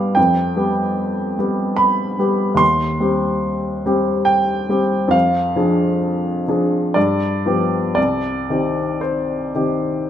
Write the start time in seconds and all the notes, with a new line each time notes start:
Already playing: G3 B3 G4 F5
0.15 F2 G5
0.56 G3 B3 G4
1.39 G3 B3 G4
1.76 B5
2.19 G3 B3 G4
2.55 D#2 C6
3.00 G3 C4 G4
3.86 G3 C4 G4
4.25 G5
4.69 G3 C4 G4
5.08 F2 F5
5.56 F3 D4 G#4
6.48 F3 D4 G#4
6.94 G2 D5
7.46 F3 B3 G4
7.95 C2 D5
8.50 D#3 C4 G4
9.01 C5
9.55 D#3 C4 G4